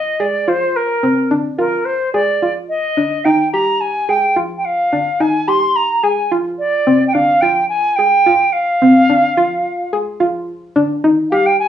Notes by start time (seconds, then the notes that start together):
Already playing: F4 D#5
0.20 G#4 D5
0.47 F4 C5
0.76 A#4
1.03 C4
1.31 D4
1.58 F4 A#4
1.85 C5
2.13 G#4 D5
2.42 F4
2.69 D#5
2.97 D4
3.24 D#4 G5
3.52 G4 A#5
3.80 G#5
4.09 G#4 G5
4.36 F4
4.57 G5
4.65 F5
4.93 D4
5.20 D#4 G#5
5.48 G4 C6
5.76 A#5
6.03 G#4 G#5
6.32 F4
6.58 D5
6.87 C4
7.07 G5
7.13 D4 F5
7.41 F4 G5
7.69 G#5
7.96 G#4 G5
8.26 F4
8.52 F5
8.82 C4
9.09 D4
9.37 F4
9.93 G#4
10.20 F4
10.76 D4
11.04 D#4
11.31 G4 F5
11.46 G5
11.59 G#5